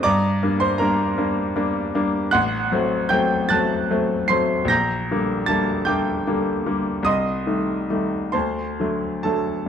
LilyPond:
<<
  \new Staff \with { instrumentName = "Grand piano" } { \time 6/8 \key g \minor \tempo 4. = 51 <d'' bes'' d'''>8. <c'' c'''>16 <bes' bes''>8 r4. | <fis'' c''' fis'''>4 <g'' g'''>8 <a'' fis''' a'''>4 <c''' c''''>8 | <bes'' g''' bes'''>4 <a'' a'''>8 <g'' d''' g'''>4. | <ees'' c''' ees'''>4. <c'' a'' c'''>4 <a' a''>8 | }
  \new Staff \with { instrumentName = "Grand piano" } { \clef bass \time 6/8 \key g \minor g,8 <g bes d'>8 <g bes d'>8 <g bes d'>8 <g bes d'>8 <g bes d'>8 | a,,8 <fis a c'>8 <fis a c'>8 <fis a c'>8 <fis a c'>8 <fis a c'>8 | bes,,8 <d g bes>8 <d g bes>8 <d g bes>8 <d g bes>8 <d g bes>8 | c,8 <ees g a>8 <ees g a>8 d,8 <d fis a>8 <d fis a>8 | }
>>